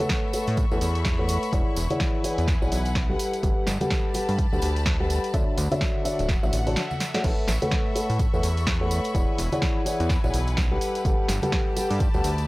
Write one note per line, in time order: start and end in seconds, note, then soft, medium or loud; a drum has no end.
0.00 0.31 A3 medium
0.00 1.53 A4 medium
0.00 0.31 A4 medium
0.00 0.31 B4 medium
0.00 0.31 C#5 medium
0.00 2.20 E5 medium
0.00 0.39 F#5 medium
0.00 0.31 F#5 loud
0.00 2.20 C#6 medium
0.00 closed hi-hat medium
0.00 tambourine soft
0.09 kick loud
0.09 snare loud
0.09 closed hi-hat medium
0.09 tambourine medium
0.18 2.20 B5 medium
0.33 0.56 A3 medium
0.33 0.56 A4 medium
0.33 0.56 B4 medium
0.33 0.56 C#5 medium
0.33 0.56 F#5 medium
0.33 open hi-hat loud
0.33 tambourine medium
0.47 0.66 A2 medium
0.47 open hi-hat medium
0.47 tambourine soft
0.57 kick loud
0.57 closed hi-hat medium
0.57 tambourine medium
0.71 0.79 E2 medium
0.71 0.83 A3 medium
0.71 0.83 A4 medium
0.71 0.83 B4 medium
0.71 0.83 C#5 medium
0.71 0.83 F#5 medium
0.71 tambourine soft
0.81 1.38 E2 medium
0.81 open hi-hat loud
0.81 tambourine medium
0.95 closed hi-hat soft
0.95 tambourine soft
1.05 kick loud
1.05 snare loud
1.05 closed hi-hat medium
1.05 tambourine medium
1.19 1.50 A3 medium
1.19 1.50 A4 medium
1.19 1.50 B4 medium
1.19 1.50 C#5 medium
1.19 1.50 F#5 medium
1.29 open hi-hat loud
1.29 tambourine loud
1.43 closed hi-hat medium
1.43 tambourine soft
1.53 1.64 E1 loud
1.53 1.75 E3 medium
1.53 4.07 E4 medium
1.53 1.75 G#4 medium
1.53 1.75 C#5 medium
1.53 1.75 D5 medium
1.53 1.75 F#5 medium
1.53 kick loud
1.53 closed hi-hat medium
1.53 tambourine medium
1.74 1.88 E1 loud
1.74 4.07 B4 medium
1.74 open hi-hat loud
1.74 tambourine medium
1.90 2.22 E3 loud
1.90 2.22 G#4 medium
1.90 2.22 C#5 medium
1.90 2.22 D5 medium
1.90 2.22 F#5 loud
1.90 closed hi-hat medium
1.90 tambourine soft
1.90 high conga medium
2.00 kick loud
2.00 snare loud
2.00 closed hi-hat medium
2.00 tambourine soft
2.24 2.46 E3 medium
2.24 2.46 G#4 medium
2.24 2.46 C#5 medium
2.24 2.46 D5 medium
2.24 2.46 F#5 medium
2.24 open hi-hat loud
2.24 tambourine loud
2.28 4.07 F#5 medium
2.28 3.19 G#5 medium
2.38 2.56 E2 medium
2.38 closed hi-hat medium
2.38 tambourine soft
2.48 kick loud
2.48 snare medium
2.48 closed hi-hat medium
2.48 tambourine soft
2.62 2.70 B1 medium
2.62 2.74 E3 medium
2.62 2.73 G#4 medium
2.62 2.74 C#5 medium
2.62 2.73 D5 medium
2.62 2.74 F#5 medium
2.62 tambourine soft
2.72 3.16 B1 medium
2.72 open hi-hat loud
2.72 tambourine medium
2.85 closed hi-hat soft
2.85 tambourine soft
2.95 kick loud
2.95 snare loud
2.95 closed hi-hat medium
2.95 tambourine soft
3.10 3.41 G3 medium
3.10 3.41 G4 medium
3.10 3.41 A4 medium
3.10 3.41 B4 medium
3.10 3.41 F#5 medium
3.19 5.34 G4 medium
3.19 open hi-hat loud
3.19 tambourine medium
3.33 closed hi-hat medium
3.33 tambourine soft
3.43 3.54 G1 loud
3.43 3.65 G3 medium
3.43 3.65 G4 medium
3.43 3.65 A4 medium
3.43 3.65 B4 medium
3.43 3.65 F#5 medium
3.43 kick loud
3.43 closed hi-hat medium
3.43 tambourine medium
3.67 3.78 G1 loud
3.67 6.11 A5 loud
3.67 snare medium
3.67 open hi-hat loud
3.67 tambourine medium
3.80 4.12 G3 medium
3.80 4.12 G4 medium
3.80 4.12 A4 medium
3.80 4.12 B4 medium
3.80 4.12 F#5 loud
3.80 6.11 B5 medium
3.80 closed hi-hat medium
3.80 tambourine soft
3.80 high conga medium
3.90 kick loud
3.90 snare loud
3.90 closed hi-hat medium
3.90 tambourine soft
4.14 4.36 G3 medium
4.14 4.36 G4 medium
4.14 4.36 A4 medium
4.14 4.36 B4 medium
4.14 4.37 F#5 loud
4.14 open hi-hat loud
4.14 tambourine medium
4.29 4.47 G2 medium
4.29 open hi-hat medium
4.29 tambourine soft
4.38 kick loud
4.38 closed hi-hat medium
4.38 tambourine soft
4.52 4.60 D2 medium
4.52 4.64 G3 medium
4.52 4.64 G4 medium
4.52 4.64 A4 medium
4.52 4.64 B4 medium
4.52 4.64 F#5 medium
4.52 tambourine soft
4.62 5.19 D2 medium
4.62 open hi-hat loud
4.62 tambourine medium
4.76 closed hi-hat medium
4.76 tambourine soft
4.86 kick loud
4.86 snare loud
4.86 closed hi-hat medium
4.86 tambourine soft
5.00 5.31 G3 medium
5.00 5.31 G4 medium
5.00 5.31 A4 medium
5.00 5.31 B4 medium
5.00 5.31 F#5 medium
5.10 open hi-hat loud
5.10 tambourine medium
5.24 closed hi-hat medium
5.24 tambourine soft
5.34 5.45 D2 loud
5.34 5.56 D3 medium
5.34 7.24 D4 medium
5.34 5.56 F#4 medium
5.34 5.56 C#5 medium
5.34 5.56 D5 medium
5.34 5.56 E5 loud
5.34 kick loud
5.34 closed hi-hat medium
5.34 tambourine medium
5.58 5.69 D2 loud
5.58 open hi-hat loud
5.58 tambourine medium
5.70 6.03 D3 loud
5.70 6.03 F#4 medium
5.70 6.03 C#5 medium
5.70 6.03 D5 medium
5.70 9.82 E5 medium
5.70 6.03 E5 loud
5.70 closed hi-hat medium
5.70 tambourine soft
5.70 high conga medium
5.77 9.15 A4 medium
5.77 8.01 F#5 loud
5.81 kick loud
5.81 snare loud
5.81 closed hi-hat medium
5.81 tambourine soft
6.05 6.27 D3 medium
6.05 6.27 F#4 medium
6.05 6.27 C#5 medium
6.05 6.27 D5 medium
6.05 6.27 E5 medium
6.05 open hi-hat loud
6.05 tambourine medium
6.19 6.37 D1 medium
6.19 closed hi-hat medium
6.19 tambourine soft
6.29 kick loud
6.29 snare medium
6.29 closed hi-hat medium
6.29 tambourine soft
6.43 6.51 A1 medium
6.43 6.55 D3 medium
6.43 6.55 F#4 medium
6.43 6.55 C#5 medium
6.43 6.54 D5 medium
6.43 6.55 E5 loud
6.43 tambourine soft
6.53 6.77 A1 medium
6.53 open hi-hat loud
6.53 tambourine medium
6.67 6.78 D3 medium
6.67 6.78 F#4 medium
6.67 6.78 C#5 medium
6.67 6.78 D5 medium
6.67 6.78 A5 medium
6.67 open hi-hat medium
6.67 tambourine soft
6.76 snare loud
6.76 closed hi-hat medium
6.76 tambourine soft
6.91 tambourine soft
6.91 high conga medium
7.00 snare medium
7.00 open hi-hat loud
7.00 tambourine medium
7.14 7.23 A3 medium
7.14 7.23 F#4 medium
7.14 7.23 C#5 medium
7.14 7.23 D5 medium
7.14 7.23 F#5 medium
7.14 snare medium
7.14 closed hi-hat medium
7.14 tambourine soft
7.24 7.35 A1 loud
7.24 7.46 A3 medium
7.24 7.46 A4 medium
7.24 7.46 B4 medium
7.24 7.46 C#5 medium
7.24 7.46 F#5 medium
7.24 kick loud
7.24 closed hi-hat medium
7.24 crash medium
7.24 tambourine medium
7.43 9.82 C#6 medium
7.48 7.59 A1 loud
7.48 snare medium
7.48 open hi-hat loud
7.48 tambourine medium
7.56 9.82 B5 medium
7.62 7.93 A3 medium
7.62 7.93 A4 medium
7.62 7.93 B4 medium
7.62 7.93 C#5 medium
7.62 7.93 F#5 loud
7.62 closed hi-hat medium
7.62 tambourine soft
7.62 high conga medium
7.71 kick loud
7.71 snare loud
7.71 closed hi-hat medium
7.71 tambourine soft
7.96 8.17 A3 medium
7.96 8.17 A4 medium
7.96 8.17 B4 medium
7.96 8.17 C#5 medium
7.96 8.17 F#5 medium
7.96 open hi-hat loud
7.96 tambourine medium
8.10 8.28 A2 medium
8.10 open hi-hat medium
8.10 tambourine soft
8.19 kick loud
8.19 closed hi-hat medium
8.19 tambourine medium
8.33 8.41 E2 medium
8.33 8.45 A3 medium
8.33 8.45 A4 medium
8.33 8.45 B4 medium
8.33 8.45 C#5 medium
8.33 8.45 F#5 loud
8.33 tambourine soft
8.43 9.00 E2 medium
8.43 open hi-hat loud
8.43 tambourine medium
8.57 closed hi-hat medium
8.57 tambourine soft
8.67 kick loud
8.67 snare loud
8.67 closed hi-hat medium
8.67 tambourine soft
8.81 9.12 A3 medium
8.81 9.12 A4 medium
8.81 9.12 B4 medium
8.81 9.12 C#5 medium
8.81 9.12 F#5 medium
8.91 open hi-hat loud
8.91 tambourine loud
9.04 closed hi-hat medium
9.04 tambourine soft
9.15 9.26 E1 loud
9.15 9.37 E3 medium
9.15 11.69 E4 medium
9.15 9.37 G#4 medium
9.15 9.36 C#5 medium
9.15 9.37 D5 medium
9.15 9.37 F#5 loud
9.15 kick loud
9.15 closed hi-hat medium
9.15 tambourine medium
9.22 11.69 B4 medium
9.38 9.50 E1 loud
9.38 open hi-hat loud
9.38 tambourine medium
9.52 9.84 E3 loud
9.52 9.84 G#4 medium
9.52 9.84 C#5 medium
9.52 9.84 D5 medium
9.52 9.84 F#5 loud
9.52 closed hi-hat medium
9.52 tambourine soft
9.52 high conga medium
9.62 kick loud
9.62 snare loud
9.62 closed hi-hat medium
9.62 tambourine medium
9.86 10.08 E3 medium
9.86 10.08 G#4 medium
9.86 10.08 C#5 medium
9.86 10.08 D5 medium
9.86 10.08 F#5 medium
9.86 11.69 F#5 medium
9.86 10.81 G#5 medium
9.86 open hi-hat loud
9.86 tambourine loud
10.00 10.18 E2 medium
10.00 closed hi-hat medium
10.00 tambourine soft
10.09 kick loud
10.09 snare medium
10.09 closed hi-hat medium
10.09 tambourine medium
10.24 10.32 B1 medium
10.24 10.35 E3 medium
10.24 10.35 G#4 medium
10.24 10.35 C#5 medium
10.24 10.35 D5 medium
10.24 10.35 F#5 loud
10.24 tambourine soft
10.34 10.78 B1 medium
10.34 open hi-hat loud
10.34 tambourine medium
10.47 closed hi-hat soft
10.47 tambourine soft
10.57 kick loud
10.57 snare loud
10.57 closed hi-hat medium
10.57 tambourine medium
10.71 11.03 G3 medium
10.71 11.03 G4 medium
10.71 11.03 A4 medium
10.71 11.03 B4 medium
10.71 11.03 F#5 medium
10.81 12.47 G4 medium
10.81 open hi-hat loud
10.81 tambourine loud
10.95 closed hi-hat medium
10.95 tambourine soft
11.05 11.16 G1 loud
11.05 11.27 G3 medium
11.05 11.27 G4 medium
11.05 11.27 A4 medium
11.05 11.27 B4 medium
11.05 11.27 F#5 loud
11.05 kick loud
11.05 closed hi-hat medium
11.05 tambourine medium
11.28 11.40 G1 loud
11.28 snare medium
11.28 open hi-hat loud
11.28 tambourine loud
11.32 12.47 A5 loud
11.42 11.74 G3 medium
11.42 11.74 G4 medium
11.42 11.74 A4 medium
11.42 11.74 B4 medium
11.42 11.74 F#5 loud
11.42 closed hi-hat medium
11.42 tambourine soft
11.42 high conga medium
11.52 kick loud
11.52 snare loud
11.52 closed hi-hat medium
11.52 tambourine soft
11.77 11.98 G3 medium
11.77 11.98 G4 medium
11.77 11.98 A4 medium
11.77 11.98 B4 medium
11.77 11.98 F#5 loud
11.77 12.47 B5 medium
11.77 open hi-hat loud
11.77 tambourine loud
11.90 12.09 G2 medium
11.90 open hi-hat medium
11.90 tambourine soft
12.00 kick loud
12.00 closed hi-hat medium
12.00 tambourine medium
12.14 12.22 D2 medium
12.14 12.26 G3 medium
12.14 12.26 G4 medium
12.14 12.26 A4 medium
12.14 12.26 B4 medium
12.14 12.26 F#5 loud
12.14 tambourine soft
12.24 12.47 D2 medium
12.24 open hi-hat loud
12.24 tambourine loud
12.38 closed hi-hat soft
12.38 tambourine soft